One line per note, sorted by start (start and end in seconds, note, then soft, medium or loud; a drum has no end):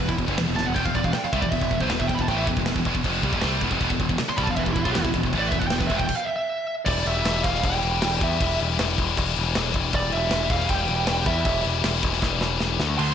0.01 0.09 E2 medium
0.01 0.10 B2 medium
0.08 0.18 E1 medium
0.08 0.16 E2 medium
0.08 0.16 B2 medium
0.08 0.14 E4 medium
0.08 kick medium
0.17 0.27 E1 medium
0.17 0.26 E2 medium
0.17 0.27 B2 medium
0.17 kick medium
0.17 crash medium
0.27 0.37 G1 medium
0.27 0.36 G2 loud
0.27 0.36 D3 loud
0.27 kick medium
0.37 0.47 E1 medium
0.37 0.45 E2 medium
0.37 0.46 B2 medium
0.37 snare loud
0.37 crash medium
0.46 0.57 E1 medium
0.46 0.54 E2 medium
0.46 0.54 B2 medium
0.55 0.67 E1 medium
0.55 0.64 E2 medium
0.55 0.64 B2 medium
0.55 0.66 A5 medium
0.55 snare medium
0.65 0.76 E1 medium
0.65 0.73 E2 medium
0.65 0.74 B2 medium
0.65 0.74 F#5 medium
0.74 0.84 E1 medium
0.74 0.83 E2 medium
0.74 0.84 B2 medium
0.74 0.85 G5 loud
0.74 kick loud
0.74 crash medium
0.85 0.94 E1 medium
0.85 0.94 E2 medium
0.85 0.94 B2 medium
0.85 0.95 F5 medium
0.85 kick medium
0.95 1.03 E1 medium
0.95 1.03 E2 medium
0.95 1.04 B2 medium
0.95 1.04 D5 medium
0.95 kick medium
0.95 crash medium
1.04 1.13 E1 medium
1.04 1.14 E2 medium
1.04 1.14 B2 medium
1.04 1.14 F5 medium
1.04 kick medium
1.13 1.24 G5 medium
1.13 muted distorted electric guitar stroke medium
1.13 muted picked electric bass stroke soft
1.13 snare loud
1.13 crash medium
1.24 1.33 F5 medium
1.24 muted picked electric bass stroke soft
1.24 muted distorted electric guitar stroke medium
1.33 1.41 C2 loud
1.33 1.42 C3 medium
1.33 1.43 G3 medium
1.33 1.43 E5 loud
1.33 kick loud
1.33 crash medium
1.41 1.51 E1 medium
1.41 1.52 E2 medium
1.41 1.52 B2 medium
1.41 1.52 D5 medium
1.41 kick medium
1.52 1.61 E1 medium
1.52 1.62 E2 medium
1.52 1.62 B2 medium
1.52 1.81 E5 loud
1.52 kick loud
1.52 crash medium
1.61 1.70 E1 medium
1.61 1.71 E2 medium
1.61 1.71 B2 medium
1.61 kick medium
1.71 1.80 E1 medium
1.71 1.82 E2 medium
1.71 1.81 B2 medium
1.71 kick medium
1.71 crash medium
1.81 1.90 B1 medium
1.81 1.91 B2 loud
1.81 1.91 F#3 loud
1.81 1.90 C5 medium
1.81 kick medium
1.90 1.99 E1 medium
1.90 1.99 E2 medium
1.90 2.00 B2 medium
1.90 2.00 B4 medium
1.90 snare loud
1.90 crash medium
1.99 2.08 E1 medium
1.99 2.10 E2 medium
1.99 2.10 B2 medium
1.99 2.09 E5 medium
1.99 kick medium
2.07 2.18 E1 medium
2.07 2.19 E2 medium
2.07 2.19 B2 medium
2.07 2.15 G5 medium
2.07 kick medium
2.07 crash medium
2.15 2.21 B5 medium
2.19 2.28 E1 medium
2.19 2.29 E2 medium
2.19 2.29 B2 medium
2.19 2.28 A5 medium
2.19 kick medium
2.28 2.46 A1 loud
2.28 2.48 A2 medium
2.28 2.48 E3 medium
2.28 2.48 A3 loud
2.28 2.38 G5 loud
2.28 kick medium
2.28 crash medium
2.38 2.44 E5 loud
2.47 2.56 E1 medium
2.47 2.58 E2 medium
2.47 2.58 B2 medium
2.47 kick medium
2.47 crash medium
2.57 2.66 E1 medium
2.57 2.67 E2 medium
2.57 2.68 B2 medium
2.57 kick medium
2.66 2.75 E1 medium
2.66 2.76 E2 medium
2.66 2.77 B2 medium
2.66 snare loud
2.66 crash medium
2.75 2.85 E1 medium
2.75 2.85 E2 medium
2.75 2.86 B2 medium
2.75 kick loud
2.85 2.94 E1 loud
2.85 2.95 E2 loud
2.85 2.95 B2 loud
2.85 kick medium
2.85 crash medium
2.95 3.04 E1 medium
2.95 3.04 E2 medium
2.95 3.05 B2 medium
2.95 kick medium
3.04 3.22 F1 loud
3.04 3.23 F2 medium
3.04 3.23 C3 loud
3.04 3.24 F3 loud
3.04 kick loud
3.04 crash medium
3.23 3.32 C2 medium
3.23 3.33 C3 medium
3.23 3.33 G3 loud
3.23 kick loud
3.23 crash medium
3.33 3.42 E1 loud
3.33 3.42 E2 medium
3.33 3.42 B2 loud
3.33 kick medium
3.42 3.61 C2 loud
3.42 3.61 C3 medium
3.42 3.62 G3 medium
3.42 3.62 C4 loud
3.42 snare loud
3.42 crash medium
3.61 3.70 E1 loud
3.61 3.71 E2 medium
3.61 3.72 B2 loud
3.61 kick loud
3.61 crash medium
3.71 3.80 F1 loud
3.71 3.80 F2 medium
3.71 3.81 C3 medium
3.71 kick medium
3.80 3.89 E1 loud
3.80 3.90 E2 medium
3.80 3.90 B2 medium
3.80 kick medium
3.80 crash medium
3.90 3.99 E1 medium
3.90 3.99 E2 medium
3.90 3.99 B2 medium
3.90 kick medium
3.99 4.09 E1 medium
3.99 4.09 E2 medium
3.99 4.09 B2 medium
3.99 kick medium
3.99 crash medium
4.09 4.19 E1 medium
4.09 4.18 E2 medium
4.09 4.20 B2 medium
4.09 kick medium
4.18 muted distorted electric guitar stroke medium
4.18 muted picked electric bass stroke soft
4.18 snare loud
4.18 crash medium
4.29 4.37 C6 loud
4.29 muted distorted electric guitar stroke medium
4.29 muted picked electric bass stroke soft
4.37 4.47 C2 loud
4.37 4.47 C3 medium
4.37 4.47 G3 loud
4.37 4.44 B5 loud
4.37 kick loud
4.37 crash medium
4.43 4.50 A5 medium
4.47 4.57 E1 medium
4.47 4.55 E2 medium
4.47 4.55 B2 medium
4.47 4.56 F5 loud
4.47 kick medium
4.56 4.66 E1 medium
4.56 4.65 E2 medium
4.56 4.65 B2 medium
4.56 4.68 B4 medium
4.56 4.63 E5 loud
4.56 kick medium
4.56 crash medium
4.66 4.75 E1 medium
4.66 4.75 E2 medium
4.66 4.75 B2 medium
4.66 4.73 G4 medium
4.66 kick medium
4.73 4.85 E1 medium
4.73 4.86 E2 medium
4.73 4.84 B2 medium
4.73 4.83 E4 medium
4.73 kick medium
4.73 crash medium
4.84 4.95 B1 loud
4.84 4.95 B2 loud
4.84 4.95 F#3 loud
4.84 4.92 F4 medium
4.84 kick medium
4.93 5.04 E1 medium
4.93 5.04 E2 medium
4.93 5.04 B2 medium
4.93 5.03 G4 medium
4.93 snare loud
4.93 crash medium
5.03 5.13 E1 medium
5.03 5.14 E2 medium
5.03 5.15 B2 medium
5.03 5.09 E4 medium
5.03 kick medium
5.14 5.23 E1 medium
5.14 5.25 E2 medium
5.14 5.25 B2 medium
5.14 kick medium
5.14 crash medium
5.23 5.33 E1 medium
5.23 5.35 E2 medium
5.23 5.34 B2 medium
5.23 kick medium
5.33 5.51 A1 loud
5.33 5.53 A2 medium
5.33 5.53 E3 loud
5.33 5.53 A3 loud
5.33 kick loud
5.33 crash medium
5.39 5.51 D5 loud
5.48 5.61 E1 medium
5.48 5.59 E5 loud
5.48 kick loud
5.48 crash medium
5.54 5.62 E2 medium
5.54 5.62 B2 medium
5.59 5.71 E1 medium
5.59 5.72 E2 medium
5.59 5.67 F#5 medium
5.59 kick medium
5.63 5.72 B2 medium
5.67 5.79 G5 loud
5.67 snare loud
5.67 crash medium
5.72 5.80 E1 medium
5.72 5.81 E2 medium
5.72 5.81 B2 medium
5.78 5.89 E1 medium
5.78 5.90 E2 medium
5.78 5.91 B2 medium
5.78 5.89 B4 medium
5.78 kick loud
5.87 5.99 E1 loud
5.87 5.98 E5 medium
5.87 kick medium
5.87 crash medium
5.91 5.99 E2 loud
5.91 5.99 B2 loud
5.97 6.09 E1 medium
5.97 6.10 E2 medium
5.97 6.10 B2 medium
5.97 6.05 G5 medium
5.97 kick medium
6.07 6.16 G5 medium
6.07 kick loud
6.07 crash loud
6.16 6.27 F5 medium
6.25 6.35 E5 medium
6.36 6.73 E5 medium
6.85 7.04 E1 loud
6.85 6.93 E3 medium
6.85 6.94 G3 medium
6.85 7.04 D5 loud
6.85 kick loud
6.85 crash loud
6.85 crash medium
6.94 7.01 E3 medium
6.94 7.02 G3 medium
7.01 7.09 E3 medium
7.01 7.10 G3 medium
7.06 7.23 E1 loud
7.06 7.16 E3 medium
7.06 7.46 E5 loud
7.06 crash medium
7.11 7.18 G3 medium
7.17 7.24 E3 medium
7.17 7.25 G3 medium
7.24 7.42 E1 medium
7.24 7.32 E3 medium
7.24 7.33 G3 medium
7.24 snare loud
7.24 crash medium
7.32 7.39 E3 medium
7.32 7.40 G3 medium
7.40 7.47 E3 medium
7.40 7.48 G3 medium
7.44 7.62 E1 medium
7.44 7.54 E3 medium
7.44 7.64 F5 loud
7.44 kick loud
7.44 snare soft
7.44 crash medium
7.48 7.55 G3 medium
7.54 7.62 E3 medium
7.54 7.63 G3 medium
7.54 snare soft
7.63 7.81 E1 loud
7.63 7.69 E3 medium
7.63 7.71 G3 medium
7.63 8.23 G5 loud
7.63 kick medium
7.63 crash medium
7.69 7.77 E3 medium
7.69 7.78 G3 medium
7.78 7.85 E3 medium
7.78 7.85 G3 medium
7.83 8.00 E1 medium
7.83 7.93 E3 medium
7.83 7.93 G3 medium
7.83 crash medium
7.94 8.00 E3 medium
7.94 8.01 G3 medium
8.01 8.20 E1 medium
8.01 8.08 E3 medium
8.01 8.09 G3 medium
8.01 snare loud
8.01 crash loud
8.09 8.15 E3 medium
8.09 8.17 G3 medium
8.16 8.23 E3 medium
8.16 8.24 G3 medium
8.21 8.38 E2 medium
8.21 8.31 E3 medium
8.21 8.32 G3 medium
8.21 8.58 E5 medium
8.21 kick loud
8.21 crash medium
8.31 8.39 E3 medium
8.31 8.40 G3 medium
8.40 8.58 E1 loud
8.40 8.47 E3 medium
8.40 8.48 G3 medium
8.40 kick loud
8.40 crash medium
8.48 8.55 E3 medium
8.48 8.56 G3 medium
8.56 8.64 E3 medium
8.56 8.64 G3 medium
8.56 crash medium
8.61 8.77 E1 medium
8.61 8.70 E3 medium
8.61 8.71 G3 medium
8.70 8.78 E3 medium
8.70 8.79 G3 medium
8.78 8.96 E1 medium
8.78 8.86 E3 medium
8.78 8.87 G3 medium
8.78 snare loud
8.78 crash medium
8.86 8.94 E3 medium
8.86 8.95 G3 medium
8.94 9.15 E1 medium
8.94 9.01 E3 medium
8.94 9.01 G3 medium
8.94 kick loud
8.98 9.09 E3 medium
8.98 9.09 G3 medium
8.98 crash medium
9.09 9.16 E3 medium
9.09 9.17 G3 medium
9.17 9.34 E1 loud
9.17 9.24 E3 medium
9.17 9.25 G3 medium
9.17 kick medium
9.17 crash loud
9.24 9.31 E3 medium
9.24 9.31 G3 medium
9.32 9.39 E3 medium
9.32 9.39 G3 medium
9.36 9.54 E1 medium
9.36 9.47 E3 medium
9.36 crash medium
9.41 9.47 G3 medium
9.47 9.54 E3 medium
9.47 9.55 G3 medium
9.55 9.73 E1 medium
9.55 9.62 E3 medium
9.55 9.63 G3 medium
9.55 snare loud
9.55 crash medium
9.62 9.69 E3 medium
9.62 9.70 G3 medium
9.69 9.76 E3 medium
9.69 9.77 G3 medium
9.74 9.91 E1 loud
9.74 9.84 E3 medium
9.74 9.85 G3 medium
9.74 kick medium
9.74 crash medium
9.85 9.93 E3 medium
9.85 9.94 G3 medium
9.93 10.11 E1 loud
9.93 10.01 E3 medium
9.93 10.01 G3 medium
9.93 10.13 D5 loud
9.93 kick loud
9.93 crash medium
10.01 10.09 E3 medium
10.01 10.09 G3 medium
10.09 10.16 E3 medium
10.09 10.18 G3 medium
10.09 crash medium
10.13 10.30 E1 loud
10.13 10.23 E3 medium
10.13 10.52 E5 loud
10.19 10.25 G3 medium
10.24 10.30 E3 medium
10.24 10.34 G3 medium
10.31 10.49 E1 medium
10.31 10.38 E3 medium
10.31 10.42 G3 medium
10.31 snare loud
10.31 crash medium
10.39 10.46 E3 medium
10.39 10.50 G3 medium
10.47 10.67 E1 loud
10.47 10.54 E3 medium
10.47 10.58 G3 medium
10.47 kick loud
10.47 crash medium
10.51 10.61 E3 medium
10.51 10.68 F5 loud
10.58 10.69 E3 medium
10.58 10.65 G3 medium
10.58 snare soft
10.65 10.73 G3 medium
10.69 10.87 E1 loud
10.69 10.76 E3 medium
10.69 11.26 G5 loud
10.69 kick loud
10.69 crash medium
10.74 10.84 E3 medium
10.74 10.81 G3 medium
10.81 10.92 E3 medium
10.81 10.89 G3 medium
10.88 11.06 E1 medium
10.88 10.97 G3 medium
10.88 crash medium
10.92 10.99 E3 medium
10.97 11.05 E3 medium
10.97 11.05 G3 medium
11.05 11.25 E1 medium
11.05 11.13 E3 medium
11.05 11.12 G3 medium
11.05 snare loud
11.05 crash medium
11.12 11.21 E3 medium
11.12 11.20 G3 medium
11.21 11.28 E3 medium
11.21 11.29 G3 medium
11.26 11.44 E2 loud
11.26 11.35 E3 medium
11.26 11.36 G3 medium
11.26 11.62 E5 medium
11.26 kick loud
11.26 crash medium
11.36 11.43 E3 medium
11.36 11.44 G3 medium
11.45 11.63 E1 loud
11.45 11.53 E3 medium
11.45 11.52 G3 medium
11.45 kick loud
11.45 crash medium
11.52 11.60 E3 medium
11.52 11.60 G3 medium
11.61 11.69 E3 medium
11.61 11.68 G3 medium
11.61 crash medium
11.65 11.82 E1 medium
11.65 11.77 G3 medium
11.70 11.75 E3 medium
11.76 11.83 E3 medium
11.76 11.85 G3 medium
11.84 12.01 E1 medium
11.84 11.92 E3 medium
11.84 11.92 G3 medium
11.84 snare loud
11.84 crash medium
11.93 12.00 E3 medium
11.93 12.00 G3 medium
12.00 12.21 E1 medium
12.00 12.08 E3 medium
12.00 12.08 G3 medium
12.00 kick loud
12.00 crash medium
12.09 12.16 E3 medium
12.09 12.17 G3 medium
12.09 snare soft
12.16 12.24 E3 medium
12.16 12.25 G3 medium
12.22 12.40 E1 medium
12.22 12.32 E3 medium
12.22 12.31 G3 medium
12.22 kick medium
12.22 snare medium
12.32 12.38 E3 medium
12.32 12.39 G3 medium
12.39 12.59 E1 medium
12.39 12.46 E3 medium
12.39 12.48 G3 medium
12.39 snare medium
12.47 12.55 E3 medium
12.47 12.56 G3 medium
12.56 12.63 E3 medium
12.56 12.63 G3 medium
12.60 12.78 E1 medium
12.60 12.71 E3 medium
12.60 12.71 G3 medium
12.60 snare loud
12.72 12.79 E3 medium
12.72 12.79 G3 medium
12.79 12.97 D2 medium
12.79 12.87 D3 medium
12.79 12.89 A3 medium
12.79 snare medium
12.87 12.95 D3 medium
12.87 12.96 A3 medium
12.96 13.14 D2 loud
12.96 13.02 D3 medium
12.96 13.03 A3 medium
12.96 13.14 C6 loud
12.96 crash medium
13.03 13.10 D3 medium
13.03 13.11 A3 medium
13.08 13.14 D3 medium
13.08 13.14 A3 medium